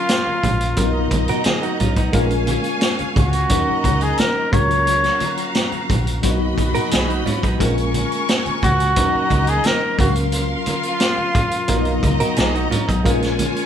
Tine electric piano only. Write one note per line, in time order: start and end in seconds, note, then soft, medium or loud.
0.00 0.16 F#3 medium
0.00 0.16 A#3 medium
0.00 0.16 C#4 medium
0.00 0.17 A#4 medium
0.77 1.61 F#3 medium
0.77 1.61 A#3 medium
0.77 1.61 B3 medium
0.77 0.84 C#4 medium
0.77 1.62 A#4 medium
0.85 1.65 D#4 medium
2.12 2.97 G#3 medium
2.12 2.97 A#3 medium
2.12 2.97 C#4 medium
2.12 2.98 F4 medium
2.12 2.98 A#4 loud
3.49 4.33 F#3 medium
3.49 4.34 A#3 medium
3.49 4.34 C#4 medium
3.49 4.34 D#4 medium
3.49 4.34 A#4 medium
4.52 5.62 F#3 medium
4.52 5.62 A#3 medium
4.52 5.62 C#4 medium
4.52 5.62 F4 medium
4.52 5.63 A#4 medium
6.22 7.07 F#3 medium
6.22 7.07 A#3 medium
6.22 7.07 B3 medium
6.22 6.30 D4 medium
6.22 7.08 F#4 medium
6.31 7.11 D#4 medium
7.59 8.43 G#3 medium
7.59 8.43 A#3 medium
7.59 7.67 C4 medium
7.59 8.44 F4 medium
7.59 8.44 A#4 medium
7.67 8.47 C#4 medium
8.96 9.80 F#3 medium
8.96 9.80 A#3 medium
8.96 9.80 C#4 medium
8.96 9.81 D#4 medium
8.96 9.81 A#4 medium
9.98 11.07 F#3 medium
9.98 11.08 A#3 medium
9.98 11.08 C#4 medium
9.98 11.08 A#4 medium
9.98 11.08 F5 medium
11.67 12.52 F#3 medium
11.67 12.52 A#3 medium
11.67 12.52 B3 medium
11.67 12.52 D#4 medium
11.67 12.53 A#4 medium
13.03 13.66 G#3 medium
13.03 13.66 A#3 medium
13.03 13.66 C#4 medium
13.03 13.66 F4 medium
13.03 13.66 A#4 loud